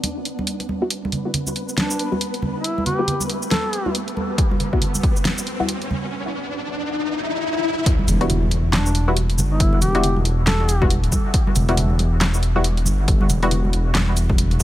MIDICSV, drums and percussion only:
0, 0, Header, 1, 2, 480
1, 0, Start_track
1, 0, Key_signature, 1, "minor"
1, 0, Tempo, 434783
1, 999, Time_signature, 4, 2, 24, 8
1, 16152, End_track
2, 0, Start_track
2, 0, Title_t, "Drums"
2, 38, Note_on_c, 9, 63, 69
2, 39, Note_on_c, 9, 42, 73
2, 40, Note_on_c, 9, 62, 47
2, 149, Note_off_c, 9, 42, 0
2, 149, Note_off_c, 9, 63, 0
2, 150, Note_off_c, 9, 62, 0
2, 280, Note_on_c, 9, 42, 53
2, 390, Note_off_c, 9, 42, 0
2, 428, Note_on_c, 9, 62, 49
2, 429, Note_on_c, 9, 63, 60
2, 519, Note_on_c, 9, 42, 72
2, 539, Note_off_c, 9, 62, 0
2, 539, Note_off_c, 9, 63, 0
2, 629, Note_off_c, 9, 42, 0
2, 662, Note_on_c, 9, 62, 39
2, 663, Note_on_c, 9, 42, 33
2, 761, Note_on_c, 9, 63, 77
2, 772, Note_off_c, 9, 62, 0
2, 773, Note_off_c, 9, 42, 0
2, 871, Note_off_c, 9, 63, 0
2, 998, Note_on_c, 9, 42, 76
2, 1109, Note_off_c, 9, 42, 0
2, 1159, Note_on_c, 9, 63, 97
2, 1239, Note_on_c, 9, 42, 52
2, 1241, Note_on_c, 9, 64, 75
2, 1269, Note_off_c, 9, 63, 0
2, 1350, Note_off_c, 9, 42, 0
2, 1352, Note_off_c, 9, 64, 0
2, 1477, Note_on_c, 9, 64, 81
2, 1479, Note_on_c, 9, 42, 81
2, 1587, Note_off_c, 9, 64, 0
2, 1589, Note_off_c, 9, 42, 0
2, 1620, Note_on_c, 9, 63, 59
2, 1623, Note_on_c, 9, 82, 70
2, 1720, Note_on_c, 9, 42, 53
2, 1731, Note_off_c, 9, 63, 0
2, 1733, Note_off_c, 9, 82, 0
2, 1830, Note_off_c, 9, 42, 0
2, 1863, Note_on_c, 9, 82, 45
2, 1956, Note_on_c, 9, 63, 79
2, 1960, Note_on_c, 9, 38, 102
2, 1960, Note_on_c, 9, 42, 76
2, 1974, Note_off_c, 9, 82, 0
2, 2067, Note_off_c, 9, 63, 0
2, 2071, Note_off_c, 9, 38, 0
2, 2071, Note_off_c, 9, 42, 0
2, 2103, Note_on_c, 9, 82, 73
2, 2201, Note_on_c, 9, 42, 56
2, 2214, Note_off_c, 9, 82, 0
2, 2311, Note_off_c, 9, 42, 0
2, 2344, Note_on_c, 9, 63, 58
2, 2440, Note_on_c, 9, 42, 80
2, 2455, Note_off_c, 9, 63, 0
2, 2551, Note_off_c, 9, 42, 0
2, 2583, Note_on_c, 9, 42, 37
2, 2675, Note_on_c, 9, 64, 73
2, 2676, Note_on_c, 9, 63, 78
2, 2693, Note_off_c, 9, 42, 0
2, 2786, Note_off_c, 9, 63, 0
2, 2786, Note_off_c, 9, 64, 0
2, 2919, Note_on_c, 9, 42, 76
2, 3029, Note_off_c, 9, 42, 0
2, 3069, Note_on_c, 9, 63, 89
2, 3159, Note_on_c, 9, 42, 47
2, 3161, Note_on_c, 9, 64, 86
2, 3180, Note_off_c, 9, 63, 0
2, 3269, Note_off_c, 9, 42, 0
2, 3271, Note_off_c, 9, 64, 0
2, 3394, Note_on_c, 9, 64, 82
2, 3399, Note_on_c, 9, 42, 77
2, 3504, Note_off_c, 9, 64, 0
2, 3509, Note_off_c, 9, 42, 0
2, 3534, Note_on_c, 9, 63, 67
2, 3542, Note_on_c, 9, 82, 69
2, 3638, Note_on_c, 9, 42, 52
2, 3645, Note_off_c, 9, 63, 0
2, 3653, Note_off_c, 9, 82, 0
2, 3748, Note_off_c, 9, 42, 0
2, 3781, Note_on_c, 9, 82, 48
2, 3879, Note_on_c, 9, 38, 109
2, 3879, Note_on_c, 9, 42, 71
2, 3884, Note_on_c, 9, 63, 93
2, 3892, Note_off_c, 9, 82, 0
2, 3989, Note_off_c, 9, 38, 0
2, 3989, Note_off_c, 9, 42, 0
2, 3994, Note_off_c, 9, 63, 0
2, 4118, Note_on_c, 9, 42, 52
2, 4228, Note_off_c, 9, 42, 0
2, 4261, Note_on_c, 9, 63, 61
2, 4358, Note_on_c, 9, 42, 76
2, 4371, Note_off_c, 9, 63, 0
2, 4469, Note_off_c, 9, 42, 0
2, 4502, Note_on_c, 9, 42, 35
2, 4601, Note_on_c, 9, 63, 91
2, 4613, Note_off_c, 9, 42, 0
2, 4712, Note_off_c, 9, 63, 0
2, 4837, Note_on_c, 9, 36, 120
2, 4839, Note_on_c, 9, 42, 71
2, 4947, Note_off_c, 9, 36, 0
2, 4949, Note_off_c, 9, 42, 0
2, 4983, Note_on_c, 9, 63, 89
2, 5078, Note_on_c, 9, 42, 50
2, 5079, Note_on_c, 9, 64, 75
2, 5094, Note_off_c, 9, 63, 0
2, 5189, Note_off_c, 9, 42, 0
2, 5189, Note_off_c, 9, 64, 0
2, 5221, Note_on_c, 9, 36, 67
2, 5316, Note_on_c, 9, 64, 75
2, 5318, Note_on_c, 9, 42, 73
2, 5331, Note_off_c, 9, 36, 0
2, 5426, Note_off_c, 9, 64, 0
2, 5428, Note_off_c, 9, 42, 0
2, 5461, Note_on_c, 9, 82, 78
2, 5465, Note_on_c, 9, 63, 65
2, 5558, Note_on_c, 9, 36, 110
2, 5558, Note_on_c, 9, 42, 51
2, 5572, Note_off_c, 9, 82, 0
2, 5576, Note_off_c, 9, 63, 0
2, 5668, Note_off_c, 9, 36, 0
2, 5668, Note_off_c, 9, 42, 0
2, 5701, Note_on_c, 9, 82, 51
2, 5794, Note_on_c, 9, 63, 92
2, 5797, Note_on_c, 9, 38, 123
2, 5797, Note_on_c, 9, 42, 72
2, 5811, Note_off_c, 9, 82, 0
2, 5904, Note_off_c, 9, 63, 0
2, 5908, Note_off_c, 9, 38, 0
2, 5908, Note_off_c, 9, 42, 0
2, 5941, Note_on_c, 9, 82, 79
2, 6036, Note_on_c, 9, 42, 51
2, 6051, Note_off_c, 9, 82, 0
2, 6147, Note_off_c, 9, 42, 0
2, 6187, Note_on_c, 9, 63, 68
2, 6277, Note_on_c, 9, 42, 76
2, 6297, Note_off_c, 9, 63, 0
2, 6387, Note_off_c, 9, 42, 0
2, 6421, Note_on_c, 9, 42, 34
2, 6520, Note_on_c, 9, 63, 98
2, 6522, Note_on_c, 9, 64, 76
2, 6531, Note_off_c, 9, 42, 0
2, 6631, Note_off_c, 9, 63, 0
2, 6632, Note_off_c, 9, 64, 0
2, 8679, Note_on_c, 9, 36, 120
2, 8680, Note_on_c, 9, 42, 80
2, 8789, Note_off_c, 9, 36, 0
2, 8791, Note_off_c, 9, 42, 0
2, 8821, Note_on_c, 9, 63, 90
2, 8920, Note_on_c, 9, 42, 57
2, 8920, Note_on_c, 9, 64, 79
2, 8920, Note_on_c, 9, 82, 75
2, 8932, Note_off_c, 9, 63, 0
2, 9031, Note_off_c, 9, 42, 0
2, 9031, Note_off_c, 9, 64, 0
2, 9031, Note_off_c, 9, 82, 0
2, 9063, Note_on_c, 9, 42, 36
2, 9160, Note_off_c, 9, 42, 0
2, 9160, Note_on_c, 9, 42, 85
2, 9164, Note_on_c, 9, 64, 78
2, 9270, Note_off_c, 9, 42, 0
2, 9274, Note_off_c, 9, 64, 0
2, 9304, Note_on_c, 9, 63, 60
2, 9397, Note_on_c, 9, 62, 67
2, 9399, Note_on_c, 9, 42, 53
2, 9414, Note_off_c, 9, 63, 0
2, 9507, Note_off_c, 9, 62, 0
2, 9510, Note_off_c, 9, 42, 0
2, 9635, Note_on_c, 9, 62, 55
2, 9636, Note_on_c, 9, 63, 90
2, 9639, Note_on_c, 9, 38, 115
2, 9639, Note_on_c, 9, 39, 92
2, 9639, Note_on_c, 9, 42, 79
2, 9746, Note_off_c, 9, 62, 0
2, 9747, Note_off_c, 9, 63, 0
2, 9750, Note_off_c, 9, 38, 0
2, 9750, Note_off_c, 9, 39, 0
2, 9750, Note_off_c, 9, 42, 0
2, 9782, Note_on_c, 9, 82, 50
2, 9879, Note_on_c, 9, 42, 59
2, 9892, Note_off_c, 9, 82, 0
2, 9989, Note_off_c, 9, 42, 0
2, 10025, Note_on_c, 9, 63, 71
2, 10118, Note_on_c, 9, 42, 82
2, 10135, Note_off_c, 9, 63, 0
2, 10229, Note_off_c, 9, 42, 0
2, 10262, Note_on_c, 9, 42, 40
2, 10357, Note_on_c, 9, 64, 89
2, 10359, Note_on_c, 9, 82, 74
2, 10365, Note_on_c, 9, 63, 89
2, 10373, Note_off_c, 9, 42, 0
2, 10467, Note_off_c, 9, 64, 0
2, 10469, Note_off_c, 9, 82, 0
2, 10476, Note_off_c, 9, 63, 0
2, 10599, Note_on_c, 9, 36, 124
2, 10599, Note_on_c, 9, 42, 77
2, 10709, Note_off_c, 9, 36, 0
2, 10709, Note_off_c, 9, 42, 0
2, 10737, Note_on_c, 9, 63, 89
2, 10837, Note_on_c, 9, 64, 80
2, 10839, Note_on_c, 9, 42, 55
2, 10839, Note_on_c, 9, 82, 78
2, 10848, Note_off_c, 9, 63, 0
2, 10947, Note_off_c, 9, 64, 0
2, 10950, Note_off_c, 9, 42, 0
2, 10950, Note_off_c, 9, 82, 0
2, 10983, Note_on_c, 9, 42, 36
2, 11079, Note_off_c, 9, 42, 0
2, 11079, Note_on_c, 9, 42, 83
2, 11082, Note_on_c, 9, 64, 88
2, 11189, Note_off_c, 9, 42, 0
2, 11192, Note_off_c, 9, 64, 0
2, 11221, Note_on_c, 9, 63, 68
2, 11318, Note_on_c, 9, 42, 54
2, 11321, Note_on_c, 9, 62, 57
2, 11332, Note_off_c, 9, 63, 0
2, 11429, Note_off_c, 9, 42, 0
2, 11431, Note_off_c, 9, 62, 0
2, 11555, Note_on_c, 9, 62, 56
2, 11558, Note_on_c, 9, 38, 118
2, 11558, Note_on_c, 9, 39, 86
2, 11558, Note_on_c, 9, 42, 80
2, 11563, Note_on_c, 9, 63, 82
2, 11665, Note_off_c, 9, 62, 0
2, 11668, Note_off_c, 9, 38, 0
2, 11668, Note_off_c, 9, 39, 0
2, 11668, Note_off_c, 9, 42, 0
2, 11674, Note_off_c, 9, 63, 0
2, 11799, Note_on_c, 9, 42, 57
2, 11799, Note_on_c, 9, 82, 53
2, 11909, Note_off_c, 9, 42, 0
2, 11909, Note_off_c, 9, 82, 0
2, 11943, Note_on_c, 9, 36, 107
2, 11943, Note_on_c, 9, 62, 54
2, 11944, Note_on_c, 9, 63, 69
2, 12039, Note_on_c, 9, 42, 81
2, 12053, Note_off_c, 9, 36, 0
2, 12054, Note_off_c, 9, 62, 0
2, 12054, Note_off_c, 9, 63, 0
2, 12149, Note_off_c, 9, 42, 0
2, 12184, Note_on_c, 9, 42, 37
2, 12278, Note_on_c, 9, 82, 72
2, 12279, Note_on_c, 9, 36, 66
2, 12279, Note_on_c, 9, 63, 92
2, 12294, Note_off_c, 9, 42, 0
2, 12389, Note_off_c, 9, 36, 0
2, 12389, Note_off_c, 9, 82, 0
2, 12390, Note_off_c, 9, 63, 0
2, 12517, Note_on_c, 9, 42, 77
2, 12518, Note_on_c, 9, 36, 126
2, 12628, Note_off_c, 9, 42, 0
2, 12629, Note_off_c, 9, 36, 0
2, 12664, Note_on_c, 9, 63, 110
2, 12756, Note_on_c, 9, 64, 87
2, 12758, Note_on_c, 9, 42, 52
2, 12758, Note_on_c, 9, 82, 77
2, 12774, Note_off_c, 9, 63, 0
2, 12867, Note_off_c, 9, 64, 0
2, 12869, Note_off_c, 9, 42, 0
2, 12869, Note_off_c, 9, 82, 0
2, 12902, Note_on_c, 9, 42, 38
2, 12998, Note_off_c, 9, 42, 0
2, 12998, Note_on_c, 9, 42, 78
2, 13004, Note_on_c, 9, 64, 92
2, 13109, Note_off_c, 9, 42, 0
2, 13115, Note_off_c, 9, 64, 0
2, 13134, Note_on_c, 9, 63, 73
2, 13239, Note_on_c, 9, 42, 53
2, 13242, Note_on_c, 9, 62, 61
2, 13245, Note_off_c, 9, 63, 0
2, 13349, Note_off_c, 9, 42, 0
2, 13353, Note_off_c, 9, 62, 0
2, 13472, Note_on_c, 9, 63, 94
2, 13480, Note_on_c, 9, 38, 127
2, 13480, Note_on_c, 9, 39, 86
2, 13480, Note_on_c, 9, 42, 76
2, 13482, Note_on_c, 9, 62, 52
2, 13582, Note_off_c, 9, 63, 0
2, 13590, Note_off_c, 9, 38, 0
2, 13590, Note_off_c, 9, 39, 0
2, 13590, Note_off_c, 9, 42, 0
2, 13593, Note_off_c, 9, 62, 0
2, 13624, Note_on_c, 9, 82, 54
2, 13719, Note_on_c, 9, 42, 54
2, 13734, Note_off_c, 9, 82, 0
2, 13829, Note_off_c, 9, 42, 0
2, 13864, Note_on_c, 9, 63, 62
2, 13958, Note_on_c, 9, 42, 73
2, 13975, Note_off_c, 9, 63, 0
2, 14069, Note_off_c, 9, 42, 0
2, 14103, Note_on_c, 9, 42, 38
2, 14191, Note_on_c, 9, 64, 84
2, 14192, Note_on_c, 9, 63, 89
2, 14199, Note_on_c, 9, 82, 76
2, 14213, Note_off_c, 9, 42, 0
2, 14301, Note_off_c, 9, 64, 0
2, 14303, Note_off_c, 9, 63, 0
2, 14309, Note_off_c, 9, 82, 0
2, 14439, Note_on_c, 9, 36, 126
2, 14439, Note_on_c, 9, 42, 77
2, 14549, Note_off_c, 9, 36, 0
2, 14550, Note_off_c, 9, 42, 0
2, 14581, Note_on_c, 9, 63, 93
2, 14675, Note_on_c, 9, 64, 85
2, 14679, Note_on_c, 9, 42, 51
2, 14679, Note_on_c, 9, 82, 80
2, 14691, Note_off_c, 9, 63, 0
2, 14786, Note_off_c, 9, 64, 0
2, 14789, Note_off_c, 9, 42, 0
2, 14789, Note_off_c, 9, 82, 0
2, 14822, Note_on_c, 9, 42, 35
2, 14916, Note_on_c, 9, 64, 74
2, 14917, Note_off_c, 9, 42, 0
2, 14917, Note_on_c, 9, 42, 76
2, 15027, Note_off_c, 9, 64, 0
2, 15028, Note_off_c, 9, 42, 0
2, 15067, Note_on_c, 9, 63, 65
2, 15159, Note_on_c, 9, 42, 52
2, 15166, Note_on_c, 9, 62, 58
2, 15177, Note_off_c, 9, 63, 0
2, 15269, Note_off_c, 9, 42, 0
2, 15276, Note_off_c, 9, 62, 0
2, 15398, Note_on_c, 9, 38, 124
2, 15398, Note_on_c, 9, 39, 81
2, 15398, Note_on_c, 9, 42, 73
2, 15407, Note_on_c, 9, 62, 51
2, 15407, Note_on_c, 9, 63, 96
2, 15508, Note_off_c, 9, 38, 0
2, 15508, Note_off_c, 9, 39, 0
2, 15508, Note_off_c, 9, 42, 0
2, 15517, Note_off_c, 9, 62, 0
2, 15517, Note_off_c, 9, 63, 0
2, 15640, Note_on_c, 9, 42, 52
2, 15640, Note_on_c, 9, 82, 57
2, 15750, Note_off_c, 9, 42, 0
2, 15750, Note_off_c, 9, 82, 0
2, 15781, Note_on_c, 9, 62, 44
2, 15782, Note_on_c, 9, 36, 106
2, 15785, Note_on_c, 9, 63, 65
2, 15879, Note_on_c, 9, 42, 77
2, 15891, Note_off_c, 9, 62, 0
2, 15893, Note_off_c, 9, 36, 0
2, 15895, Note_off_c, 9, 63, 0
2, 15989, Note_off_c, 9, 42, 0
2, 16019, Note_on_c, 9, 62, 34
2, 16022, Note_on_c, 9, 42, 35
2, 16118, Note_on_c, 9, 82, 83
2, 16129, Note_off_c, 9, 62, 0
2, 16132, Note_off_c, 9, 42, 0
2, 16152, Note_off_c, 9, 82, 0
2, 16152, End_track
0, 0, End_of_file